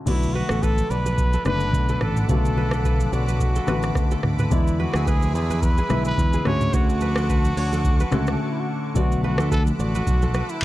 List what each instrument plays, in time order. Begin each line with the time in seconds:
0.06 fingered electric bass B1, grand piano D3 A3 B3 F#4, trumpet E4, analog synth pad A4 F#5 B5 D6, kora D5, kick, crash, low conga, shaker
0.23 shaker
0.35 trumpet F#4, kora B4, high conga
0.49 fingered electric bass A1, kora A4, cross-stick, high conga, shaker
0.63 trumpet A4, kora B4, kick, shaker
0.78 high conga, shaker
0.90 fingered electric bass B1, trumpet B4, kora D5, shaker
1.06 kora B4, high conga, shaker
1.18 kick, low conga, shaker
1.33 kora A4, high conga, shaker
1.45 fingered electric bass F#1, grand piano D3 A3 B3 D4, kora B4, trumpet B4, cross-stick, high conga, shaker
1.60 shaker
1.73 fingered electric bass B1, kick, low conga, shaker
1.89 kora A4, shaker
2.01 fingered electric bass A1, trumpet A4, kora B4, cross-stick, mid tom
2.16 mid tom, shaker
2.28 fingered electric bass B1, grand piano C#3 A3 B3 F#4, trumpet A4, kora D5, kick, low conga, shaker
2.34 grand piano D3
2.45 shaker
2.57 kora B4, high conga
2.71 kora A4, cross-stick, high conga, shaker
2.85 kora B4, kick, shaker
3.00 high conga, shaker
3.12 fingered electric bass B1, trumpet F#4, kora D5, shaker
3.28 kora B4, high conga, shaker
3.40 kick, low conga, shaker
3.56 kora A4, high conga, shaker
3.67 fingered electric bass A1, grand piano D3 A3 B3 F#4, kora B4, cross-stick, high conga, shaker
3.83 cross-stick, shaker
3.95 kick, cross-stick, low conga, shaker
4.11 kora A4, shaker
4.23 fingered electric bass D2, cross-stick, mid tom
4.38 kora B4, mid tom, shaker
4.50 fingered electric bass E2, grand piano D3 G#3 B3 E4, trumpet E4, analog synth pad G#4 E5, kora D5, kick, low conga, shaker
4.67 shaker
4.79 trumpet F#4, kora B4, high conga
4.94 fingered electric bass D2, kora G#4, cross-stick, high conga, shaker
5.07 trumpet G#4, kora B4, kick, shaker
5.22 high conga, shaker
5.35 fingered electric bass E2, trumpet G#4, kora D5, shaker
5.50 kora B4, high conga, shaker
5.62 trumpet B4, kick, low conga, shaker
5.78 kora G#4, high conga, shaker
5.89 fingered electric bass B1, grand piano D3 G#3 B3 E4, kora B4, cross-stick, high conga, shaker
6.05 trumpet B4, shaker
6.18 fingered electric bass E2, kick, low conga, shaker
6.33 kora G#4, shaker
6.45 fingered electric bass D2, grand piano D3 A3 C#4 F#4, analog synth pad A4 F#5 C#6 D6, kora B4, trumpet C#5, cross-stick, mid tom
6.61 mid tom, shaker
6.73 fingered electric bass D2, trumpet F#4, kora C#5, kick, low conga, shaker
6.90 shaker
7.01 kora B4, high conga, shaker
7.16 kora A4, cross-stick, high conga, shaker
7.29 kora B4, kick, shaker
7.45 high conga, shaker
7.57 fingered electric bass D2, kora C#5, open hi-hat, shaker
7.73 kora A4, high conga, shaker
7.85 kick, low conga, shaker
8.00 kora B4, high conga, shaker
8.11 fingered electric bass C#2, grand piano D3 A3 C#4 F#4, kora A4, cross-stick, high conga, shaker
8.27 cross-stick, shaker
8.33 trumpet A4
8.41 trumpet F#4
8.51 trumpet E4
8.60 trumpet F#4
8.95 fingered electric bass B1, grand piano D3 A3 B3 F#4, trumpet F#4, analog synth pad A4 F#5 B5 D6, kora D5, kick, shaker
9.12 shaker
9.24 trumpet F#4, kora B4, high conga
9.38 fingered electric bass D2, kora A4, cross-stick, high conga, shaker
9.52 trumpet A4, kora B4, kick, shaker
9.67 high conga, shaker
9.79 fingered electric bass A1, trumpet F#4, kora D5, shaker
9.95 kora B4, high conga, shaker
10.07 fingered electric bass B1, kick, low conga, shaker
10.22 kora A4, high conga, shaker
10.34 kora B4, cross-stick, high conga, shaker
10.49 trumpet E4, shaker